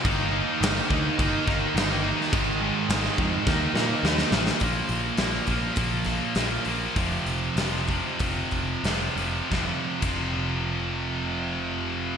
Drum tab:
CC |x---x---x---x---|x---x-----------|----------------|----------------|
HH |----------------|----------------|o-o-o-o-o-o-o-o-|o-o-o-o-o-o-o-o-|
SD |----o-----o-o--o|----o---o-o-oooo|----o-----o-o---|----o-------o---|
BD |o-----o-o-o-----|o-----o-o-------|o-----o-o-o-----|o-----o-o-o-----|

CC |---x------------|
HH |----------------|
SD |o---------------|
BD |o--o------------|